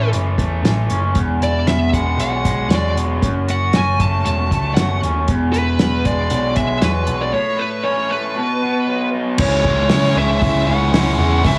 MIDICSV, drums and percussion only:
0, 0, Header, 1, 2, 480
1, 0, Start_track
1, 0, Tempo, 515021
1, 1067, Time_signature, 4, 2, 24, 8
1, 10797, End_track
2, 0, Start_track
2, 0, Title_t, "Drums"
2, 121, Note_on_c, 9, 42, 76
2, 214, Note_off_c, 9, 42, 0
2, 356, Note_on_c, 9, 36, 84
2, 363, Note_on_c, 9, 42, 56
2, 449, Note_off_c, 9, 36, 0
2, 456, Note_off_c, 9, 42, 0
2, 605, Note_on_c, 9, 42, 75
2, 608, Note_on_c, 9, 38, 109
2, 698, Note_off_c, 9, 42, 0
2, 701, Note_off_c, 9, 38, 0
2, 836, Note_on_c, 9, 42, 54
2, 930, Note_off_c, 9, 42, 0
2, 1072, Note_on_c, 9, 42, 74
2, 1076, Note_on_c, 9, 36, 101
2, 1165, Note_off_c, 9, 42, 0
2, 1169, Note_off_c, 9, 36, 0
2, 1324, Note_on_c, 9, 42, 57
2, 1418, Note_off_c, 9, 42, 0
2, 1559, Note_on_c, 9, 42, 71
2, 1562, Note_on_c, 9, 38, 88
2, 1652, Note_off_c, 9, 42, 0
2, 1655, Note_off_c, 9, 38, 0
2, 1801, Note_on_c, 9, 36, 76
2, 1806, Note_on_c, 9, 42, 55
2, 1894, Note_off_c, 9, 36, 0
2, 1900, Note_off_c, 9, 42, 0
2, 2047, Note_on_c, 9, 42, 75
2, 2140, Note_off_c, 9, 42, 0
2, 2282, Note_on_c, 9, 36, 73
2, 2284, Note_on_c, 9, 42, 61
2, 2375, Note_off_c, 9, 36, 0
2, 2378, Note_off_c, 9, 42, 0
2, 2521, Note_on_c, 9, 42, 77
2, 2523, Note_on_c, 9, 38, 108
2, 2614, Note_off_c, 9, 42, 0
2, 2617, Note_off_c, 9, 38, 0
2, 2772, Note_on_c, 9, 42, 61
2, 2865, Note_off_c, 9, 42, 0
2, 3004, Note_on_c, 9, 36, 102
2, 3006, Note_on_c, 9, 42, 80
2, 3098, Note_off_c, 9, 36, 0
2, 3099, Note_off_c, 9, 42, 0
2, 3248, Note_on_c, 9, 42, 62
2, 3341, Note_off_c, 9, 42, 0
2, 3478, Note_on_c, 9, 42, 78
2, 3481, Note_on_c, 9, 38, 97
2, 3572, Note_off_c, 9, 42, 0
2, 3574, Note_off_c, 9, 38, 0
2, 3725, Note_on_c, 9, 36, 76
2, 3727, Note_on_c, 9, 42, 61
2, 3818, Note_off_c, 9, 36, 0
2, 3820, Note_off_c, 9, 42, 0
2, 3967, Note_on_c, 9, 42, 76
2, 4060, Note_off_c, 9, 42, 0
2, 4205, Note_on_c, 9, 36, 84
2, 4211, Note_on_c, 9, 42, 62
2, 4299, Note_off_c, 9, 36, 0
2, 4305, Note_off_c, 9, 42, 0
2, 4441, Note_on_c, 9, 42, 85
2, 4444, Note_on_c, 9, 38, 110
2, 4534, Note_off_c, 9, 42, 0
2, 4537, Note_off_c, 9, 38, 0
2, 4691, Note_on_c, 9, 42, 56
2, 4784, Note_off_c, 9, 42, 0
2, 4919, Note_on_c, 9, 42, 72
2, 4925, Note_on_c, 9, 36, 103
2, 5013, Note_off_c, 9, 42, 0
2, 5018, Note_off_c, 9, 36, 0
2, 5164, Note_on_c, 9, 42, 58
2, 5257, Note_off_c, 9, 42, 0
2, 5397, Note_on_c, 9, 42, 71
2, 5400, Note_on_c, 9, 38, 99
2, 5491, Note_off_c, 9, 42, 0
2, 5493, Note_off_c, 9, 38, 0
2, 5641, Note_on_c, 9, 42, 55
2, 5642, Note_on_c, 9, 36, 80
2, 5735, Note_off_c, 9, 36, 0
2, 5735, Note_off_c, 9, 42, 0
2, 5872, Note_on_c, 9, 42, 78
2, 5965, Note_off_c, 9, 42, 0
2, 6112, Note_on_c, 9, 42, 56
2, 6119, Note_on_c, 9, 36, 81
2, 6205, Note_off_c, 9, 42, 0
2, 6212, Note_off_c, 9, 36, 0
2, 6354, Note_on_c, 9, 42, 87
2, 6356, Note_on_c, 9, 38, 107
2, 6447, Note_off_c, 9, 42, 0
2, 6450, Note_off_c, 9, 38, 0
2, 6587, Note_on_c, 9, 42, 58
2, 6680, Note_off_c, 9, 42, 0
2, 8743, Note_on_c, 9, 49, 120
2, 8751, Note_on_c, 9, 36, 115
2, 8836, Note_off_c, 9, 49, 0
2, 8844, Note_off_c, 9, 36, 0
2, 8991, Note_on_c, 9, 36, 92
2, 9084, Note_off_c, 9, 36, 0
2, 9221, Note_on_c, 9, 46, 57
2, 9224, Note_on_c, 9, 38, 104
2, 9314, Note_off_c, 9, 46, 0
2, 9317, Note_off_c, 9, 38, 0
2, 9354, Note_on_c, 9, 38, 32
2, 9447, Note_off_c, 9, 38, 0
2, 9708, Note_on_c, 9, 46, 58
2, 9709, Note_on_c, 9, 36, 114
2, 9801, Note_off_c, 9, 46, 0
2, 9802, Note_off_c, 9, 36, 0
2, 10194, Note_on_c, 9, 46, 67
2, 10196, Note_on_c, 9, 38, 122
2, 10287, Note_off_c, 9, 46, 0
2, 10290, Note_off_c, 9, 38, 0
2, 10666, Note_on_c, 9, 36, 110
2, 10666, Note_on_c, 9, 46, 66
2, 10759, Note_off_c, 9, 46, 0
2, 10760, Note_off_c, 9, 36, 0
2, 10797, End_track
0, 0, End_of_file